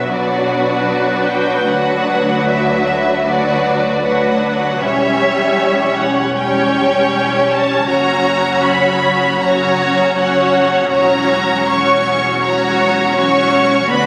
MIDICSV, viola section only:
0, 0, Header, 1, 2, 480
1, 0, Start_track
1, 0, Tempo, 795756
1, 1021, Time_signature, 4, 2, 24, 8
1, 1500, Tempo, 780234
1, 3900, Tempo, 758534
1, 6300, Tempo, 743494
1, 8806, End_track
2, 0, Start_track
2, 0, Title_t, "Viola section"
2, 0, Program_c, 0, 48
2, 58, Note_on_c, 0, 62, 33
2, 60, Note_on_c, 0, 54, 33
2, 1001, Note_off_c, 0, 62, 0
2, 1002, Note_off_c, 0, 54, 0
2, 1016, Note_on_c, 0, 54, 37
2, 1016, Note_on_c, 0, 62, 39
2, 1958, Note_off_c, 0, 54, 0
2, 1958, Note_off_c, 0, 62, 0
2, 1971, Note_on_c, 0, 62, 39
2, 1972, Note_on_c, 0, 54, 36
2, 2439, Note_off_c, 0, 62, 0
2, 2441, Note_off_c, 0, 54, 0
2, 2447, Note_on_c, 0, 62, 42
2, 2449, Note_on_c, 0, 54, 41
2, 2927, Note_off_c, 0, 62, 0
2, 2928, Note_off_c, 0, 54, 0
2, 2931, Note_on_c, 0, 61, 47
2, 2932, Note_on_c, 0, 55, 50
2, 3892, Note_off_c, 0, 55, 0
2, 3892, Note_off_c, 0, 61, 0
2, 3899, Note_on_c, 0, 55, 49
2, 3900, Note_on_c, 0, 61, 45
2, 4829, Note_off_c, 0, 55, 0
2, 4829, Note_off_c, 0, 61, 0
2, 4840, Note_on_c, 0, 54, 50
2, 4843, Note_on_c, 0, 61, 53
2, 5795, Note_off_c, 0, 54, 0
2, 5796, Note_off_c, 0, 61, 0
2, 5817, Note_on_c, 0, 54, 45
2, 5817, Note_on_c, 0, 61, 50
2, 6286, Note_off_c, 0, 61, 0
2, 6289, Note_off_c, 0, 54, 0
2, 6293, Note_on_c, 0, 61, 54
2, 6298, Note_on_c, 0, 54, 56
2, 6763, Note_off_c, 0, 61, 0
2, 6766, Note_off_c, 0, 54, 0
2, 6775, Note_on_c, 0, 61, 53
2, 6779, Note_on_c, 0, 54, 55
2, 7249, Note_off_c, 0, 61, 0
2, 7251, Note_off_c, 0, 54, 0
2, 7261, Note_on_c, 0, 54, 52
2, 7261, Note_on_c, 0, 61, 59
2, 7742, Note_off_c, 0, 54, 0
2, 7742, Note_off_c, 0, 61, 0
2, 7749, Note_on_c, 0, 61, 47
2, 7750, Note_on_c, 0, 54, 48
2, 8219, Note_off_c, 0, 61, 0
2, 8220, Note_off_c, 0, 54, 0
2, 8230, Note_on_c, 0, 54, 54
2, 8230, Note_on_c, 0, 61, 58
2, 8690, Note_off_c, 0, 54, 0
2, 8690, Note_off_c, 0, 61, 0
2, 8694, Note_on_c, 0, 62, 58
2, 8696, Note_on_c, 0, 59, 55
2, 8806, Note_off_c, 0, 59, 0
2, 8806, Note_off_c, 0, 62, 0
2, 8806, End_track
0, 0, End_of_file